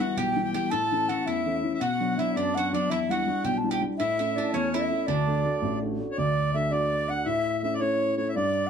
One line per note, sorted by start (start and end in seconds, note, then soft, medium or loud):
0.00 0.29 E3 soft
0.00 0.30 G3 soft
0.00 0.30 B3 medium
0.00 0.16 F#4 medium
0.00 0.18 F#5 medium
0.00 0.19 F#5 medium
0.17 0.53 B1 medium
0.17 0.52 G4 medium
0.17 0.29 G5 medium
0.17 0.53 G5 loud
0.31 0.42 G5 medium
0.36 0.53 E3 medium
0.36 0.53 G3 soft
0.36 0.53 B3 medium
0.43 0.54 G5 medium
0.54 0.68 E3 soft
0.54 0.68 G3 soft
0.54 0.69 B3 soft
0.54 0.71 G4 medium
0.54 0.72 G5 medium
0.54 0.71 G5 medium
0.70 1.08 A2 medium
0.70 1.10 A4 medium
0.70 1.10 A5 loud
0.70 1.28 A5 medium
0.92 1.07 E3 soft
0.92 1.08 A3 soft
0.92 1.08 C#4 soft
1.09 1.39 E3 soft
1.09 1.39 A3 soft
1.09 1.39 C#4 soft
1.09 1.25 F#4 medium
1.09 1.20 F#5 medium
1.20 1.28 F#5 medium
1.26 1.63 E2 medium
1.26 1.78 E4 medium
1.26 1.57 E5 medium
1.26 1.73 E5 medium
1.46 1.62 E3 medium
1.46 1.62 A3 soft
1.46 1.62 C#4 medium
1.63 1.77 E3 soft
1.63 1.78 A3 soft
1.63 1.78 C#4 soft
1.74 1.81 E5 medium
1.80 2.17 B2 medium
1.80 2.19 F#4 medium
1.80 2.19 F#5 medium
1.80 2.17 F#5 loud
2.01 2.16 F#3 soft
2.01 2.17 B3 soft
2.01 2.17 D4 soft
2.18 2.48 F#3 soft
2.18 2.48 B3 soft
2.18 2.49 D4 soft
2.18 2.35 E4 medium
2.18 2.34 E5 medium
2.18 2.36 E5 medium
2.35 2.72 F#2 medium
2.35 2.55 D4 medium
2.35 2.56 D5 medium
2.55 2.71 F#3 soft
2.55 2.71 B3 soft
2.55 2.72 D4 medium
2.55 2.73 F#4 medium
2.55 2.73 F#5 medium
2.55 2.72 F#5 medium
2.73 2.87 F#3 soft
2.73 2.87 B3 soft
2.73 2.87 D4 soft
2.73 2.91 D4 medium
2.73 2.91 D5 medium
2.73 2.92 D5 medium
2.90 3.26 E2 medium
2.90 3.09 E4 medium
2.90 3.12 E5 loud
2.90 2.99 E5 medium
3.09 3.25 G3 soft
3.09 3.25 D4 soft
3.09 3.26 E4 medium
3.09 3.44 F#4 medium
3.09 3.46 F#5 medium
3.09 3.43 F#5 medium
3.26 3.57 G3 soft
3.26 3.57 D4 soft
3.26 3.57 E4 medium
3.44 3.81 B1 medium
3.44 3.57 G4 medium
3.44 3.59 G5 medium
3.44 3.57 G5 medium
3.58 3.72 A5 medium
3.64 3.80 G3 soft
3.64 3.80 D4 medium
3.64 3.81 E4 medium
3.70 3.81 G4 medium
3.70 3.82 G5 medium
3.81 3.95 G3 soft
3.81 3.96 D4 soft
3.81 3.96 E4 medium
3.98 4.35 A2 medium
3.98 4.18 E4 medium
3.98 4.33 E5 loud
3.98 4.56 E5 medium
4.19 4.35 A3 soft
4.19 4.35 C#4 soft
4.19 4.35 E4 medium
4.35 4.66 A3 soft
4.35 4.66 C#4 soft
4.35 4.55 D4 medium
4.35 4.66 E4 medium
4.35 4.52 D5 medium
4.54 4.90 E2 medium
4.54 4.72 C#4 medium
4.54 4.74 C#5 medium
4.54 4.72 C#5 medium
4.73 4.88 A3 soft
4.73 4.89 C#4 soft
4.73 4.89 E4 medium
4.73 5.06 E4 medium
4.73 5.08 E5 medium
4.73 5.06 E5 medium
4.90 5.04 A3 soft
4.90 5.04 C#4 soft
4.90 5.04 E4 medium
5.06 5.44 D2 medium
5.06 5.79 D4 medium
5.06 5.82 D5 medium
5.06 5.79 D5 medium
5.27 5.43 A3 medium
5.27 5.44 D4 soft
5.27 5.44 F#4 soft
5.45 5.75 A3 soft
5.45 5.75 D4 soft
5.45 5.75 F#4 soft
5.62 5.98 A1 medium
5.82 5.98 A3 medium
5.82 5.98 D4 soft
5.82 5.99 F#4 medium
6.00 6.13 A3 soft
6.00 6.14 D4 soft
6.00 6.14 F#4 soft
6.11 6.17 C#5 medium
6.17 7.23 D2 medium
6.17 6.52 D5 medium
6.17 6.56 D5 medium
6.54 6.70 A3 soft
6.54 6.70 D4 soft
6.54 6.70 F#4 soft
6.54 6.73 E5 medium
6.54 6.72 E5 medium
6.71 7.07 A3 medium
6.71 7.07 D4 soft
6.71 7.08 F#4 medium
6.71 7.10 D5 medium
7.08 7.25 A3 soft
7.08 7.25 D4 soft
7.08 7.25 F#5 medium
7.08 7.27 F#5 medium
7.26 8.32 A2 medium
7.26 7.62 E5 medium
7.26 7.60 E5 loud
7.63 7.79 A3 soft
7.63 7.79 C#4 soft
7.63 7.79 E4 medium
7.63 7.74 E5 medium
7.63 7.79 E5 medium
7.74 7.81 D5 medium
7.80 8.16 A3 soft
7.80 8.16 C#4 soft
7.80 8.16 E4 medium
7.80 8.15 C#5 medium
8.17 8.34 A3 soft
8.17 8.34 C#4 soft
8.17 8.34 E4 medium
8.17 8.28 C#5 medium
8.17 8.34 C#5 medium
8.29 8.35 E5 medium
8.35 8.70 G2 medium
8.35 8.68 D5 loud
8.35 8.70 D5 medium
8.67 8.70 F#5 medium